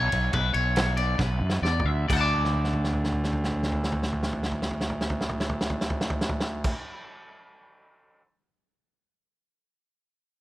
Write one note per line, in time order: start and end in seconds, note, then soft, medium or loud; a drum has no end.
0.00 0.11 B1 medium
0.00 0.33 C#5 loud
0.12 0.32 B1 medium
0.12 kick medium
0.12 ride medium
0.33 0.53 B1 loud
0.33 0.53 B4 medium
0.33 kick loud
0.33 ride loud
0.54 1.15 B1 medium
0.54 0.96 C#5 medium
0.54 ride medium
0.76 snare loud
0.76 ride loud
0.97 1.18 D5 medium
0.97 ride medium
1.18 1.40 B1 loud
1.18 1.63 B4 medium
1.18 kick loud
1.18 snare medium
1.41 1.61 F#2 medium
1.50 snare medium
1.62 1.83 E2 medium
1.62 1.86 D5 medium
1.62 snare medium
1.80 floor tom loud
1.85 2.06 D2 medium
1.85 2.08 E5 medium
2.08 6.70 D2 medium
2.08 2.13 D5 medium
2.08 kick loud
2.08 crash loud
2.13 2.20 F#5 medium
2.13 6.73 A5 medium
2.21 6.75 D6 medium
2.34 floor tom medium
2.44 snare soft
2.53 floor tom medium
2.64 snare soft
2.73 floor tom medium
2.84 snare medium
2.93 floor tom medium
3.04 snare medium
3.12 floor tom medium
3.24 snare medium
3.33 floor tom medium
3.44 snare medium
3.52 floor tom medium
3.63 snare medium
3.72 floor tom medium
3.84 snare medium
3.92 floor tom medium
4.03 snare medium
4.13 floor tom medium
4.23 snare medium
4.33 floor tom medium
4.43 snare medium
4.52 floor tom medium
4.62 snare medium
4.71 floor tom medium
4.81 snare medium
4.90 floor tom medium
5.01 snare medium
5.10 floor tom medium
5.21 snare medium
5.29 floor tom medium
5.40 snare medium
5.49 floor tom medium
5.61 snare medium
5.70 floor tom medium
5.81 snare medium
5.90 floor tom medium
6.01 snare loud
6.10 floor tom loud
6.21 snare loud
6.29 floor tom loud
6.40 snare medium
6.64 kick loud
6.64 crash loud